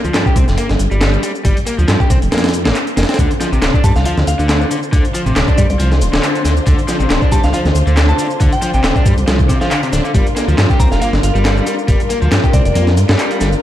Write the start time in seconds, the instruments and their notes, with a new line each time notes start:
0.05 detuned saw bass D2, overdriven electric guitar F3, shaker
0.14 detuned saw bass G2, snare, clap, closed hi-hat, shaker
0.26 overdriven electric guitar G4, kick, shaker
0.36 detuned saw bass C2, overdriven electric guitar C4, kick, closed hi-hat, shaker
0.48 detuned saw bass F1, snare, shaker
0.58 detuned saw bass G1, overdriven electric guitar A#3, closed hi-hat, shaker
0.69 detuned saw bass G1, snare, shaker
0.79 detuned saw bass G1, closed hi-hat, shaker
0.91 detuned saw bass G1, overdriven electric guitar G3, shaker
1.01 snare, clap, closed hi-hat, shaker
1.13 shaker
1.23 overdriven electric guitar G3, closed hi-hat, shaker
1.35 shaker
1.45 detuned saw bass G1, overdriven electric guitar G3, kick, closed hi-hat, shaker
1.57 closed hi-hat, shaker
1.66 overdriven electric guitar A#3, closed hi-hat, shaker
1.78 detuned saw bass D2, overdriven electric guitar F3, shaker
1.88 detuned saw bass G2, snare, clap, closed hi-hat, shaker
2.00 overdriven electric guitar G4, kick, shaker
2.10 detuned saw bass C2, overdriven electric guitar C4, kick, closed hi-hat, shaker
2.22 detuned saw bass F1, closed hi-hat, shaker
2.32 detuned saw bass F2, overdriven electric guitar A#3, snare, closed hi-hat, shaker
2.38 snare, closed hi-hat
2.44 snare, closed hi-hat, shaker
2.49 snare, closed hi-hat
2.54 closed hi-hat, shaker
2.65 detuned saw bass G1, overdriven electric guitar A#3, snare, shaker
2.75 clap, closed hi-hat, shaker
2.87 closed hi-hat, shaker
2.97 detuned saw bass F1, overdriven electric guitar A#3, snare, closed hi-hat, shaker
3.03 snare, closed hi-hat
3.09 overdriven electric guitar C4, snare, closed hi-hat, shaker
3.14 snare, closed hi-hat
3.19 detuned saw bass D2, string section D3 D4 F4 C5, overdriven electric guitar D3, kick, closed hi-hat, shaker
3.31 closed hi-hat, shaker
3.41 overdriven electric guitar F3, snare, closed hi-hat, shaker
3.52 detuned saw bass A1, overdriven electric guitar C3, shaker
3.62 detuned saw bass D1, snare, clap, closed hi-hat, shaker
3.74 overdriven electric guitar D4, kick, shaker
3.84 detuned saw bass G2, overdriven electric guitar G3, synth bell A5, kick, closed hi-hat, shaker
3.96 detuned saw bass C2, synth bell F5, snare, shaker
4.05 detuned saw bass D2, overdriven electric guitar F3, synth bell F5, closed hi-hat, shaker
4.18 detuned saw bass D2, snare, shaker
4.27 detuned saw bass D2, synth bell F5, closed hi-hat, shaker
4.39 detuned saw bass D2, overdriven electric guitar D3, shaker
4.49 snare, clap, closed hi-hat, shaker
4.61 shaker
4.71 overdriven electric guitar D3, closed hi-hat, shaker
4.83 shaker
4.93 detuned saw bass D2, overdriven electric guitar D3, kick, closed hi-hat, shaker
5.05 closed hi-hat, shaker
5.14 overdriven electric guitar F3, closed hi-hat, shaker
5.26 detuned saw bass A1, overdriven electric guitar C3, shaker
5.36 detuned saw bass D1, snare, clap, closed hi-hat, shaker
5.48 overdriven electric guitar D4, kick, shaker
5.58 detuned saw bass G2, overdriven electric guitar G3, synth bell D5, kick, closed hi-hat, shaker
5.70 detuned saw bass C2, synth bell D5, closed hi-hat, shaker
5.80 detuned saw bass C2, overdriven electric guitar F3, closed hi-hat, shaker
5.92 snare, shaker
6.01 detuned saw bass D1, closed hi-hat, shaker
6.13 detuned saw bass D1, overdriven electric guitar D3, snare, shaker
6.23 clap, closed hi-hat, shaker
6.35 closed hi-hat, shaker
6.45 detuned saw bass D2, overdriven electric guitar D3, snare, closed hi-hat, shaker
6.57 shaker
6.66 detuned saw bass D2, overdriven electric guitar D3, kick, closed hi-hat, shaker
6.78 closed hi-hat, shaker
6.88 overdriven electric guitar F3, snare, closed hi-hat, shaker
7.00 detuned saw bass A1, overdriven electric guitar C3, shaker
7.10 detuned saw bass D1, snare, clap, closed hi-hat, shaker
7.22 overdriven electric guitar D4, kick, shaker
7.32 detuned saw bass G2, overdriven electric guitar G3, synth bell A5, kick, closed hi-hat, shaker
7.43 detuned saw bass C2, synth bell F5, snare, shaker
7.53 detuned saw bass D2, overdriven electric guitar F3, synth bell F5, closed hi-hat, shaker
7.65 detuned saw bass D2, snare, shaker
7.75 detuned saw bass D2, closed hi-hat, shaker
7.87 detuned saw bass D2, overdriven electric guitar D3, shaker
7.97 snare, clap, closed hi-hat, shaker
8.09 synth bell A5, shaker
8.19 overdriven electric guitar D3, closed hi-hat, shaker
8.30 shaker
8.40 detuned saw bass D2, overdriven electric guitar D3, kick, closed hi-hat, shaker
8.52 synth bell G5, closed hi-hat, shaker
8.62 overdriven electric guitar F3, closed hi-hat, shaker
8.74 detuned saw bass A1, overdriven electric guitar C3, synth bell G5, shaker
8.84 detuned saw bass D1, synth bell G5, snare, clap, closed hi-hat, shaker
8.96 overdriven electric guitar D4, kick, shaker
9.06 detuned saw bass G2, overdriven electric guitar G3, kick, closed hi-hat, shaker
9.18 detuned saw bass C2, closed hi-hat, shaker
9.28 detuned saw bass C2, overdriven electric guitar F3, snare, closed hi-hat, shaker
9.39 kick, shaker
9.49 overdriven electric guitar C3, kick, closed hi-hat, shaker
9.61 overdriven electric guitar F3, synth bell F5, snare, shaker
9.71 overdriven electric guitar D3, synth bell F5, clap, closed hi-hat, shaker
9.83 overdriven electric guitar C3, closed hi-hat, shaker
9.93 detuned saw bass D1, overdriven electric guitar D4, snare, closed hi-hat, shaker
10.04 overdriven electric guitar D3, shaker
10.14 detuned saw bass G1, string section G3 A#4, overdriven electric guitar G3, kick, closed hi-hat, shaker
10.27 closed hi-hat, shaker
10.36 overdriven electric guitar A#3, snare, closed hi-hat, shaker
10.48 detuned saw bass D2, overdriven electric guitar F3, shaker
10.58 detuned saw bass G2, snare, clap, closed hi-hat, shaker
10.70 overdriven electric guitar G4, kick, shaker
10.80 detuned saw bass C2, overdriven electric guitar C4, synth bell A#5, kick, closed hi-hat, shaker
10.92 detuned saw bass F1, synth bell F5, snare, shaker
11.01 detuned saw bass G1, overdriven electric guitar A#3, synth bell F5, closed hi-hat, shaker
11.13 detuned saw bass G1, snare, shaker
11.23 detuned saw bass G1, synth bell F5, closed hi-hat, shaker
11.35 detuned saw bass G1, overdriven electric guitar G3, shaker
11.45 snare, clap, closed hi-hat, shaker
11.57 shaker
11.67 overdriven electric guitar G3, closed hi-hat, shaker
11.79 shaker
11.88 detuned saw bass G1, overdriven electric guitar G3, kick, closed hi-hat, shaker
12.00 closed hi-hat, shaker
12.10 overdriven electric guitar A#3, closed hi-hat, shaker
12.22 detuned saw bass D2, overdriven electric guitar F3, shaker
12.32 detuned saw bass G2, snare, clap, closed hi-hat, shaker
12.44 overdriven electric guitar G4, kick, shaker
12.53 detuned saw bass C2, overdriven electric guitar C4, synth bell D5, kick, closed hi-hat, shaker
12.65 detuned saw bass F1, synth bell D5, closed hi-hat, shaker
12.75 detuned saw bass F2, overdriven electric guitar A#3, closed hi-hat, shaker
12.87 snare, shaker
12.97 detuned saw bass G2, closed hi-hat, shaker
13.09 detuned saw bass G2, overdriven electric guitar G3, snare, shaker
13.19 clap, closed hi-hat, shaker
13.31 closed hi-hat, shaker
13.41 detuned saw bass G1, overdriven electric guitar G3, snare, closed hi-hat, shaker
13.52 shaker